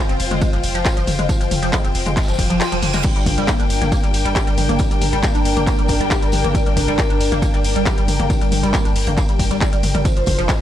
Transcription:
Already playing: F4 C5 G5
0.09 F1 C4, closed hi-hat, ride
0.20 F1, open hi-hat, ride, tambourine
0.31 F1 G#3, snare, closed hi-hat, mid tom, ride
0.41 G#3, kick, closed hi-hat, ride, tambourine
0.53 F1 F3, snare, closed hi-hat, ride
0.63 F1, open hi-hat, ride, tambourine
0.75 F1 F3, closed hi-hat, ride
0.85 F4, kick, snare, clap, closed hi-hat, ride, tambourine
0.97 F1 F3, closed hi-hat, ride
1.07 F1, open hi-hat, mid tom, ride, tambourine
1.19 F1 G#3, closed hi-hat, mid tom, ride
1.29 F3, kick, closed hi-hat, ride, tambourine
1.41 F1 F3, closed hi-hat, ride
1.51 F1, open hi-hat, mid tom, ride, tambourine
1.62 F1 F3, closed hi-hat, ride
1.73 G#3, kick, snare, clap, closed hi-hat, ride, tambourine
1.84 F1 C4, closed hi-hat, ride
1.95 F1, open hi-hat, ride
2.06 F1 G#3, closed hi-hat, mid tom, ride
2.17 G#3, kick, snare, clap, closed hi-hat, ride, tambourine, reverse cymbal
2.23 snare, tambourine
2.28 F1 F3, snare, closed hi-hat, ride, tambourine
2.33 snare, tambourine
2.39 F1, kick, open hi-hat, ride, tambourine
2.50 F1 F3, snare, closed hi-hat, ride
2.60 F4, snare, clap, closed hi-hat, ride, tambourine
2.72 F1 F3, closed hi-hat, ride
2.82 F1, open hi-hat, mid tom, ride, tambourine
2.93 F1 G#3, snare, closed hi-hat, mid tom, ride, tambourine
3.04 G3 D4, kick, closed hi-hat, ride, tambourine, crash
3.16 G1 G3, closed hi-hat, ride
3.26 G1, kick, snare, open hi-hat, mid tom, ride, tambourine
3.32 A#4
3.38 G1 G3, closed hi-hat, ride
3.48 A#3, kick, snare, clap, closed hi-hat, ride, tambourine
3.60 G1 D4, closed hi-hat, ride
3.70 G1, open hi-hat, ride, tambourine
3.81 G1 A#3, snare, closed hi-hat, mid tom, ride
3.92 A#3, kick, closed hi-hat, ride, tambourine
4.03 G1 G3, snare, closed hi-hat, ride
4.14 G1, open hi-hat, ride, tambourine
4.25 G1 G3, closed hi-hat, ride
4.36 G4, kick, snare, clap, closed hi-hat, ride, tambourine
4.47 G1 G3, closed hi-hat, ride
4.57 G1, open hi-hat, mid tom, ride, tambourine
4.69 G1 A#3, closed hi-hat, mid tom, ride
4.79 G3, kick, closed hi-hat, ride, tambourine
4.91 G1 G3, closed hi-hat, ride
5.01 G1, open hi-hat, mid tom, ride, tambourine
5.13 G1 G3, closed hi-hat, ride
5.23 A#3, kick, snare, clap, closed hi-hat, ride, tambourine
5.35 G1 D4, closed hi-hat, ride
5.45 G1, open hi-hat, ride
5.57 G1 A#3, closed hi-hat, mid tom, ride
5.67 A#3, kick, clap, closed hi-hat, ride, tambourine
5.79 G1 G3, closed hi-hat, ride
5.88 G1, kick, open hi-hat, ride, tambourine
6.00 G1 G3, snare, closed hi-hat, ride
6.11 G4, kick, snare, clap, closed hi-hat, ride, tambourine
6.22 G1 G3, closed hi-hat, ride
6.32 G1, open hi-hat, mid tom, ride, tambourine
6.44 G1 A#3, closed hi-hat, mid tom, ride
6.55 G3, kick, closed hi-hat, ride, tambourine
6.66 G1 G3, closed hi-hat, ride
6.77 G1, kick, snare, open hi-hat, mid tom, ride, tambourine
6.88 G1 G3, closed hi-hat, ride
6.98 A#3, kick, snare, clap, closed hi-hat, ride, tambourine
7.10 G1 D4, closed hi-hat, ride
7.20 G1, open hi-hat, ride, tambourine
7.32 G1 A#3, snare, closed hi-hat, mid tom, ride
7.42 A#3, kick, closed hi-hat, ride, tambourine
7.53 G1 G3, snare, closed hi-hat, ride
7.64 G1, open hi-hat, ride, tambourine
7.76 G1 G3, closed hi-hat, ride
7.86 G4, kick, snare, clap, closed hi-hat, ride, tambourine
7.98 G1 G3, closed hi-hat, ride
8.08 G1, open hi-hat, mid tom, ride, tambourine
8.19 G1 A#3, closed hi-hat, mid tom, ride
8.30 G3, kick, closed hi-hat, ride, tambourine
8.41 G1 G3, closed hi-hat, ride
8.52 G1, open hi-hat, mid tom, ride, tambourine
8.63 G1 G3, closed hi-hat, ride
8.74 A#3, kick, snare, clap, closed hi-hat, ride, tambourine
8.85 G1 D4, closed hi-hat, ride
8.96 G1, open hi-hat, ride
9.07 G1 A#3, closed hi-hat, mid tom, ride
9.17 A#3, kick, clap, closed hi-hat, ride, tambourine
9.29 G1 G3, closed hi-hat, ride
9.39 G1, kick, open hi-hat, ride, tambourine
9.51 G1 G3, snare, closed hi-hat, ride
9.61 G3, kick, snare, clap, closed hi-hat, ride, tambourine
9.73 G1 G3, closed hi-hat, ride
9.83 G1, open hi-hat, mid tom, ride, tambourine
9.95 G1 G3, closed hi-hat, mid tom, ride
10.05 F3 F4, kick, closed hi-hat, ride, tambourine
10.15 F1 F3 C5, closed hi-hat, ride
10.26 F1, kick, snare, open hi-hat, mid tom, ride, tambourine
10.38 F1 F3, closed hi-hat, ride
10.49 G#3 G#5, kick, snare, clap, closed hi-hat, ride, tambourine

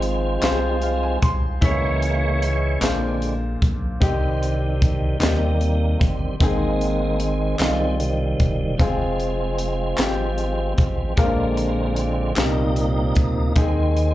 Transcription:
Already playing: G#1 G#2 F3 G#3 C4 F4 G#4 C5
0.02 closed hi-hat
0.42 C2 F4 G4 C5, snare, clap, closed hi-hat
0.50 G#4
0.82 F5, closed hi-hat
1.03 G#5
1.22 C2 C6, kick, closed hi-hat
1.61 C#2 C#3 E3 G#3 A#3 E4 G#4 C#5, kick, closed hi-hat
1.65 C#5
2.02 closed hi-hat
2.42 G#3, closed hi-hat
2.81 A#1 A#2 D3 G#3 A#3 C4 D4 F4 G#4 C5, snare, clap, closed hi-hat
3.22 closed hi-hat
3.62 B1, kick, closed hi-hat
4.00 C2 C3 D#3 G3 C4 D#4 G4, kick, closed hi-hat
4.43 closed hi-hat
4.82 kick, closed hi-hat
5.20 D#2 D#3 G3 A#3 C4 D#4 G4, snare, clap, closed hi-hat
5.61 closed hi-hat
5.99 G1 D#3 G3 C4, kick, closed hi-hat
6.39 G#1 G#2 D#3 G#3 A#3 C4 D#4 G#4, kick, closed hi-hat
6.81 closed hi-hat
7.20 G#3, closed hi-hat
7.59 C2 D#3 G3 G#3 C4 D#4 F4, snare, clap, closed hi-hat
8.00 C3 D#3 G3, closed hi-hat
8.40 E1, kick, closed hi-hat
8.77 F1 F3 G#3 C4 F4 G#4, kick, closed hi-hat
9.20 closed hi-hat
9.58 closed hi-hat
9.97 G#1 C4 F4 G4, snare, clap, closed hi-hat
10.38 closed hi-hat
10.77 A1 F3 G#3 C4, kick, closed hi-hat
11.16 A#1 A#2 D3 F3 G#3 A#3 C4 F4 A#4, kick, closed hi-hat
11.25 D4
11.57 closed hi-hat
11.96 G#3, closed hi-hat
12.36 C2 A#2 C3 G3 A#3 C4 D4 D#4 A#4, snare, clap, closed hi-hat
12.44 D#4
12.76 closed hi-hat
13.15 D2 A#3, kick, closed hi-hat
13.56 D#2 D#3 G#3 C4 D#4 G#4, kick, closed hi-hat
13.97 closed hi-hat

